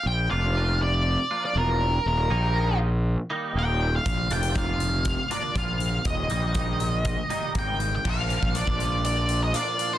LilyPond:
<<
  \new Staff \with { instrumentName = "Lead electric guitar" } { \time 4/4 \key bes \mixolydian \tempo 4 = 120 g''8 f''4 d''4~ d''16 d''16 bes'4 | bes'4. r4. g''8. f''16~ | f''8 g''8 f''4 f''8 d''8 f''4 | ees''2. g''8. g''16 |
f''4 d''4 d''8. ees''16 d''8. c''16 | }
  \new Staff \with { instrumentName = "Clean electric guitar" } { \time 4/4 \key bes \mixolydian r8 <f bes d' f'>8 <f bes d' f'>8 r4 <f bes d' f'>8 <f bes d' f'>8 r8 | r8 <ees g bes ees'>8 <ees g bes ees'>8 r4 <ees g bes ees'>8 <ees g bes ees'>8 r8 | r8 <f bes d' f'>8 <f bes d' f'>8 r4 <f bes d' f'>8 <f bes d' f'>8 r8 | r8 <ees g bes ees'>8 <ees g bes ees'>8 r4 <ees g bes ees'>8 <ees g bes ees'>8 r8 |
<bes, f bes d' f'>8 <bes d' f'>8 <f bes d' f'>8 <bes d' f'>4. <bes, f bes d' f'>8 <bes d' f'>8 | }
  \new Staff \with { instrumentName = "Fingered electric bass" } { \clef bass \time 4/4 \key bes \mixolydian bes,,8 f,,2 r8 fes,,4 | ees,,8 bes,,2 r8 ees,,4 | bes,,8 f,,2 r8 bes,,4 | ees,,8 bes,,2 r8 aes,,4 |
bes,,8. bes,,8 bes,,2 r8. | }
  \new DrumStaff \with { instrumentName = "Drums" } \drummode { \time 4/4 r4 r4 r4 r4 | r4 r4 r4 r4 | <hh bd>8 hh16 hh16 <hh bd>8 hh8 <hh bd>8 hh8 <hh bd>8 hh8 | <hh bd>8 hh8 <hh bd>8 hh8 <hh bd>8 hh8 <hh bd>8 hh8 |
<cymc bd>8 hh16 bd16 hh16 bd16 hh8 hh8 hh8 hh8 hh8 | }
>>